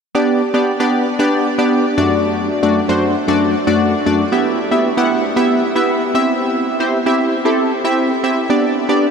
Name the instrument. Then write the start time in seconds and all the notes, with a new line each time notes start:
analog polysynth
0.15 B3 D4 G4 D5
0.54 B3 D4 G4 D5
0.80 B3 D4 G4 D5
1.19 B3 D4 G4 D5
1.58 B3 D4 G4 D5
1.97 F#2 A3 D4 F#4 D5
2.63 F#2 A3 D4 F#4 D5
2.89 F#2 A3 D4 F#4 C5
3.28 F#2 A3 D4 F#4 D5
3.67 F#2 A3 D4 F#4 D5
4.06 F#2 A3 D4 F#4 D5
4.32 B3 E4 G4 E5
4.71 B3 E4 G4 E5
4.97 B3 E4 G4 F#5
5.36 B3 E4 G4 E5
5.75 B3 E4 G4 E5
6.15 C4 E4 G4 E5
6.80 C4 E4 G4 C5
7.06 C4 E4 G4 E5
7.45 C4 E4 G4 A4
7.84 C4 E4 G4 E5
8.23 C4 E4 G4 E5
8.50 B3 D4 G4 D5
8.89 B3 D4 G4 D5